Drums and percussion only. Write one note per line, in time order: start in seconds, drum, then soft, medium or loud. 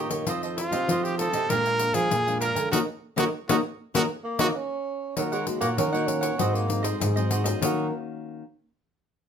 0.11 pandeiro medium
0.27 pandeiro medium
0.43 pandeiro soft
0.58 pandeiro medium
0.72 pandeiro medium
0.89 pandeiro medium
1.05 pandeiro soft
1.19 pandeiro medium
1.33 pandeiro medium
1.50 pandeiro medium
1.66 pandeiro soft
1.79 pandeiro medium
1.94 pandeiro medium
2.11 pandeiro medium
2.28 pandeiro soft
2.41 pandeiro medium
2.56 pandeiro medium
2.73 pandeiro medium
3.18 pandeiro medium
3.49 pandeiro loud
3.95 pandeiro medium
4.39 pandeiro loud
5.17 pandeiro medium
5.33 pandeiro soft
5.47 pandeiro medium
5.61 pandeiro medium
5.78 pandeiro medium
5.95 pandeiro soft
6.08 pandeiro medium
6.23 pandeiro medium
6.39 pandeiro medium
6.55 pandeiro soft
6.70 pandeiro medium
6.84 pandeiro medium
7.01 pandeiro medium
7.17 pandeiro soft
7.31 pandeiro medium
7.46 pandeiro medium
7.62 pandeiro loud